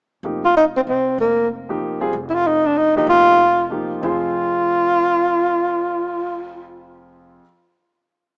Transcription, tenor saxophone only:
0.45 0.55 F4 medium
0.57 0.65 D#4 medium
0.76 0.81 C4 medium
0.88 1.17 C4 medium
1.20 1.49 A#3 medium
2.29 2.36 E4 medium
2.35 2.48 F4 medium
2.47 2.68 D#4 medium
2.66 2.79 D4 medium
2.77 2.96 D#4 medium
2.97 3.08 D#4 medium
3.09 3.67 F4 medium
4.03 6.69 F4 medium

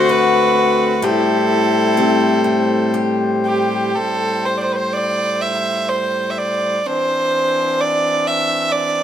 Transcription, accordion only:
0.00 1.01 D3 medium
0.00 0.99 C4 medium
0.00 1.01 F#4 medium
1.02 3.92 A2 medium
1.02 3.92 G3 medium
1.02 3.93 C5 medium
3.95 6.82 A2 medium
3.95 6.82 G3 medium
3.95 6.82 C5 medium
6.86 9.03 E3 medium
6.86 9.03 C4 medium
6.86 9.03 D4 medium

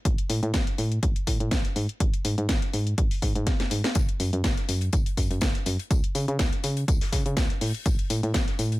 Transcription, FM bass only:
0.05 0.16 A1 loud
0.30 0.41 A2 medium
0.43 0.52 A2 loud
0.54 0.65 A1 medium
0.78 0.99 A2 medium
1.03 1.14 A1 medium
1.27 1.38 A2 medium
1.40 1.50 A2 medium
1.52 1.63 A1 medium
1.76 1.87 G#2 medium
2.00 2.11 G#1 loud
2.25 2.36 G#2 medium
2.38 2.47 G#2 loud
2.49 2.60 G#1 medium
2.74 2.94 G#2 medium
2.98 3.09 G#1 medium
3.22 3.33 G#2 loud
3.35 3.48 G#2 loud
3.47 3.58 G#1 medium
3.71 3.82 G#2 medium
3.95 4.06 F#1 loud
4.20 4.31 F#2 medium
4.33 4.42 F#2 loud
4.44 4.55 F#1 medium
4.69 4.89 F#2 medium
4.93 5.04 F#1 loud
5.17 5.28 F#2 medium
5.31 5.40 F#2 medium
5.42 5.53 F#1 medium
5.66 5.77 F#2 medium
5.91 6.02 C#2 loud
6.15 6.26 C#3 medium
6.28 6.37 C#3 loud
6.39 6.50 C#2 medium
6.64 6.84 C#3 medium
6.88 6.99 C#2 medium
7.12 7.23 C#3 medium
7.26 7.35 C#3 medium
7.37 7.48 C#2 medium
7.61 7.72 A2 medium
7.86 7.97 A1 loud
8.10 8.21 A2 medium
8.23 8.33 A2 loud
8.34 8.45 A1 medium
8.59 8.80 A2 medium

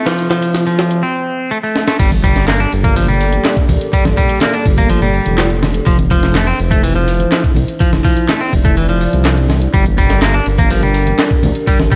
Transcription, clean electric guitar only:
0.06 0.29 F3 medium
0.30 0.65 F3 loud
0.67 1.02 F3 medium
1.03 1.50 C4 medium
1.51 1.57 A3 loud
1.63 1.86 A3 medium
1.88 1.98 A3 medium
1.99 2.10 G3 medium
2.24 2.47 G3 loud
2.48 2.59 A#3 medium
2.60 2.72 D4 loud
2.84 2.94 A#3 loud
2.96 3.06 F3 medium
3.08 3.56 G3 medium
3.93 4.03 G3 medium
4.17 4.40 G3 loud
4.42 4.53 A#3 medium
4.54 4.65 D4 loud
4.78 4.88 A#3 loud
4.90 5.00 F3 medium
5.02 5.49 G3 medium
5.86 5.97 F3 medium
6.11 6.34 F3 loud
6.35 6.47 A3 medium
6.47 6.59 C4 loud
6.71 6.81 A3 loud
6.83 6.93 E3 medium
6.95 7.43 F3 medium
7.80 7.90 F3 medium
8.05 8.28 F3 loud
8.29 8.40 A3 medium
8.41 8.52 C4 loud
8.65 8.75 A3 loud
8.77 8.87 E3 medium
8.89 9.36 F3 medium
9.74 9.84 G3 medium
9.98 10.21 G3 loud
10.22 10.34 A#3 medium
10.34 10.46 D4 loud
10.59 10.69 A#3 loud
10.71 10.81 F3 medium
10.83 11.30 G3 medium
11.68 11.77 G3 medium
11.92 11.96 G3 loud

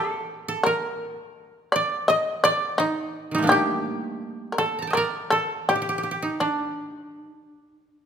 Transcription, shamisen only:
0.00 0.62 A4 medium
0.63 1.69 A#4 loud
1.72 2.06 D5 loud
2.08 2.42 D#5 loud
2.44 2.77 D5 loud
2.78 3.46 D#4 loud
3.49 4.47 G4 loud
4.52 4.58 A#4 medium
4.58 4.92 A4 loud
4.93 5.28 A#4 medium
5.30 5.65 A4 loud
5.69 6.38 G4 medium
6.40 8.06 D4 medium

